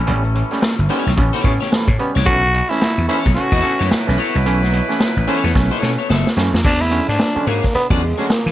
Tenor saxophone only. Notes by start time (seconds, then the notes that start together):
2.00 B3
2.26 F#4
2.69 E4
3.08 E4
3.35 F#4
6.66 D4
6.81 E4
7.09 D4
7.47 A#3
7.75 B3
8.03 G#3
8.30 A#3